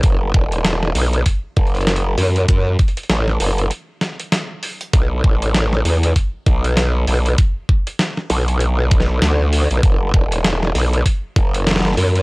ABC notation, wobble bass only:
X:1
M:4/4
L:1/16
Q:"Swing 16ths" 1/4=98
K:F#m
V:1 name="Wobble bass" clef=bass
F,,,2 E,,,4 B,,,2 z2 F,,,4 F,,2 | F,,2 z2 A,,,2 F,,,2 z8 | B,,,2 A,,,4 E,,2 z2 B,,,4 B,,,2 | z6 B,,,6 D,,3 B,,, |
z2 E,,,4 B,,,2 z2 F,,,4 F,,2 |]